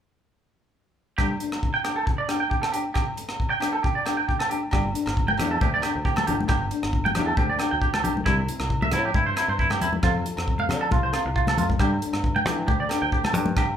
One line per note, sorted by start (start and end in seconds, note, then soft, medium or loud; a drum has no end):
1.18 1.32 G3 medium
1.18 1.33 A3 medium
1.18 1.33 D4 medium
1.18 1.26 G4 medium
1.18 kick medium
1.18 cross-stick medium
1.18 low agogo medium
1.40 1.56 A3 soft
1.40 1.54 D4 soft
1.40 closed hi-hat soft
1.52 cross-stick medium
1.52 low agogo medium
1.63 kick medium
1.74 1.81 G5 medium
1.84 2.00 A3 soft
1.84 1.99 D4 soft
1.84 1.93 G4 medium
1.84 cross-stick medium
1.84 closed hi-hat soft
1.84 low agogo medium
1.96 2.03 A4 medium
2.06 muted clean electric guitar stroke medium
2.06 kick medium
2.18 2.25 D5 medium
2.28 2.44 A3 soft
2.28 2.43 D4 medium
2.28 2.37 G4 medium
2.28 cross-stick medium
2.28 closed hi-hat soft
2.28 low agogo medium
2.40 2.47 G5 medium
2.50 2.59 G4 medium
2.50 kick medium
2.62 2.69 A4 medium
2.62 cross-stick medium
2.62 low agogo medium
2.72 2.88 A3 soft
2.72 2.87 D4 soft
2.72 2.81 G4 medium
2.72 closed hi-hat soft
2.94 3.03 G4 medium
2.94 kick medium
2.94 cross-stick medium
2.94 low agogo medium
3.16 3.32 A3 soft
3.16 muted nylon-string guitar stroke soft
3.16 closed hi-hat soft
3.29 cross-stick medium
3.29 low agogo medium
3.40 kick medium
3.50 3.58 G5 medium
3.60 3.76 A3 soft
3.60 3.75 D4 soft
3.60 3.69 G4 medium
3.60 cross-stick medium
3.60 closed hi-hat soft
3.60 low agogo medium
3.73 3.80 A4 medium
3.83 3.92 G4 medium
3.83 kick medium
3.95 4.02 D5 medium
4.05 4.22 A3 soft
4.05 4.20 D4 medium
4.05 4.14 G4 medium
4.05 cross-stick medium
4.05 closed hi-hat soft
4.05 low agogo medium
4.17 4.25 G5 medium
4.28 4.36 G4 medium
4.28 kick medium
4.39 4.47 A4 medium
4.39 cross-stick medium
4.39 low agogo medium
4.49 4.65 A3 soft
4.49 4.64 D4 medium
4.49 4.58 G4 medium
4.49 closed hi-hat soft
4.71 4.93 G1 medium
4.71 4.86 G3 medium
4.71 4.86 A3 medium
4.71 4.87 D4 medium
4.71 4.81 G4 medium
4.71 kick medium
4.71 cross-stick medium
4.71 low agogo medium
4.94 5.09 A3 soft
4.94 5.08 D4 medium
4.94 closed hi-hat medium
5.06 5.40 G1 medium
5.06 cross-stick medium
5.06 low agogo medium
5.17 kick medium
5.28 5.35 G5 medium
5.28 high conga medium
5.38 5.59 E2 medium
5.38 5.54 A3 soft
5.38 5.53 D4 medium
5.38 5.47 G4 medium
5.38 cross-stick medium
5.38 closed hi-hat soft
5.38 low conga medium
5.38 low agogo medium
5.51 5.58 A4 medium
5.61 5.82 D2 medium
5.61 5.70 G4 medium
5.61 kick medium
5.61 high conga medium
5.74 5.81 D5 medium
5.82 5.98 A3 soft
5.82 5.97 D4 medium
5.82 5.91 G4 medium
5.82 cross-stick medium
5.82 closed hi-hat medium
5.82 low agogo medium
5.95 6.29 D2 medium
6.05 6.13 G4 medium
6.05 kick medium
6.16 6.24 A4 medium
6.16 cross-stick medium
6.16 high conga medium
6.16 low agogo medium
6.27 6.48 G1 medium
6.27 6.42 A3 soft
6.27 6.41 D4 medium
6.27 6.35 G4 medium
6.27 closed hi-hat soft
6.27 low conga medium
6.41 high conga medium
6.48 6.70 G1 medium
6.48 6.57 G4 medium
6.48 kick medium
6.48 cross-stick medium
6.48 low agogo medium
6.71 6.87 A3 soft
6.71 6.85 D4 medium
6.71 closed hi-hat soft
6.83 7.17 G1 medium
6.83 cross-stick medium
6.83 low agogo medium
6.93 kick medium
7.05 7.12 G5 medium
7.05 high conga medium
7.15 7.36 E2 medium
7.15 7.31 A3 soft
7.15 7.29 D4 medium
7.15 7.23 G4 medium
7.15 cross-stick medium
7.15 closed hi-hat soft
7.15 low conga medium
7.15 low agogo medium
7.26 7.34 A4 medium
7.37 7.58 D2 medium
7.37 7.45 G4 medium
7.37 kick medium
7.37 high conga medium
7.50 7.56 D5 medium
7.59 7.75 A3 soft
7.59 7.74 D4 medium
7.59 7.68 G4 medium
7.59 cross-stick medium
7.59 closed hi-hat soft
7.59 low agogo medium
7.71 8.03 D2 medium
7.71 7.78 G5 medium
7.82 7.90 G4 medium
7.82 kick medium
7.94 8.01 A4 medium
7.94 cross-stick medium
7.94 high conga medium
7.94 low agogo medium
8.03 8.24 B1 medium
8.03 8.19 A3 soft
8.03 8.18 D4 medium
8.03 8.12 G4 medium
8.03 closed hi-hat soft
8.03 low conga medium
8.17 high conga medium
8.26 8.47 C2 medium
8.26 8.40 G3 medium
8.26 8.41 C4 medium
8.26 8.34 E4 medium
8.26 muted nylon-string guitar stroke medium
8.26 kick medium
8.26 cross-stick medium
8.26 low agogo medium
8.48 8.64 C4 soft
8.48 8.63 E4 medium
8.48 closed hi-hat medium
8.60 8.93 C2 medium
8.60 cross-stick medium
8.60 low agogo medium
8.70 kick medium
8.82 8.89 E5 medium
8.82 high conga medium
8.92 9.13 A2 medium
8.92 9.01 E4 medium
8.92 9.07 E4 medium
8.92 cross-stick medium
8.92 closed hi-hat medium
8.92 low conga medium
8.92 low agogo medium
8.96 9.08 C4 soft
9.05 9.12 G4 medium
9.14 9.35 G2 medium
9.14 9.23 E4 medium
9.14 kick medium
9.14 high conga medium
9.26 9.33 C5 medium
9.36 9.52 C4 soft
9.36 9.50 E4 medium
9.36 9.45 E4 medium
9.36 cross-stick medium
9.36 closed hi-hat soft
9.36 low agogo medium
9.48 9.81 G2 medium
9.48 9.56 C5 medium
9.59 9.67 E4 medium
9.59 kick medium
9.70 9.78 G4 medium
9.70 cross-stick medium
9.70 high conga medium
9.70 low agogo medium
9.79 10.01 E2 medium
9.79 9.95 C4 soft
9.79 9.94 E4 medium
9.79 9.89 E4 medium
9.79 closed hi-hat soft
9.79 low conga medium
9.93 high conga medium
10.03 10.23 F2 medium
10.03 10.17 F3 medium
10.03 10.17 C4 medium
10.03 10.11 F4 medium
10.03 10.17 F4 medium
10.03 10.18 A4 medium
10.03 kick medium
10.03 cross-stick medium
10.03 low agogo medium
10.25 10.39 F4 soft
10.25 10.39 A4 medium
10.25 muted nylon-string guitar stroke soft
10.25 closed hi-hat soft
10.37 10.70 F2 medium
10.37 cross-stick medium
10.37 low agogo medium
10.48 kick medium
10.59 10.66 F5 medium
10.59 high conga medium
10.69 10.90 D3 medium
10.69 10.84 C4 soft
10.69 10.84 F4 soft
10.69 10.83 A4 medium
10.69 cross-stick medium
10.69 closed hi-hat soft
10.69 low conga medium
10.69 low agogo medium
10.81 10.88 A4 medium
10.91 11.12 C2 medium
10.91 11.00 F4 medium
10.91 kick medium
10.91 high conga medium
11.03 11.10 C5 medium
11.13 11.28 C4 soft
11.13 11.27 F4 medium
11.13 11.21 F4 medium
11.13 11.27 A4 medium
11.13 cross-stick medium
11.13 closed hi-hat soft
11.13 low agogo medium
11.25 11.58 C2 medium
11.25 muted clean electric guitar stroke medium
11.36 11.44 F4 medium
11.36 kick medium
11.47 11.55 A4 medium
11.47 cross-stick medium
11.47 high conga medium
11.47 low agogo medium
11.57 11.78 F2 medium
11.57 11.72 C4 soft
11.57 11.72 F4 soft
11.57 11.66 F4 medium
11.57 11.71 A4 medium
11.57 closed hi-hat soft
11.57 high conga medium
11.57 low conga medium
11.69 kick medium
11.69 high conga medium
11.79 12.00 G2 medium
11.79 11.93 G3 medium
11.79 11.94 A3 medium
11.79 11.94 D4 medium
11.79 11.88 G4 medium
11.79 11.94 A4 medium
11.79 kick medium
11.79 cross-stick medium
11.79 low agogo medium
12.02 12.17 A3 soft
12.02 12.16 D4 medium
12.02 12.16 A4 medium
12.02 closed hi-hat soft
12.13 12.46 G2 medium
12.13 cross-stick medium
12.13 low agogo medium
12.24 kick medium
12.36 12.43 G5 medium
12.36 high conga medium
12.46 12.66 E3 medium
12.46 12.62 A3 soft
12.46 12.61 D4 soft
12.46 12.54 G4 medium
12.46 12.61 A4 medium
12.46 cross-stick medium
12.46 closed hi-hat soft
12.46 low conga medium
12.46 low agogo medium
12.68 12.89 D2 medium
12.68 12.76 G4 medium
12.68 kick medium
12.68 high conga medium
12.80 12.87 D5 medium
12.89 13.05 D4 medium
12.89 12.98 G4 medium
12.89 13.04 A4 medium
12.89 muted nylon-string guitar stroke soft
12.89 cross-stick medium
12.89 closed hi-hat soft
12.89 low agogo medium
13.02 13.34 D2 medium
13.02 13.09 G5 medium
13.12 13.21 G4 medium
13.12 kick medium
13.24 13.31 A4 medium
13.24 cross-stick medium
13.24 high conga medium
13.24 low agogo medium
13.34 13.54 G2 medium
13.34 13.50 A3 soft
13.34 13.49 D4 medium
13.34 13.43 G4 medium
13.34 13.48 A4 medium
13.34 closed hi-hat medium
13.34 low conga medium
13.46 high conga medium
13.56 13.77 G2 medium
13.56 13.65 G4 medium
13.56 kick medium
13.56 cross-stick medium
13.56 low agogo medium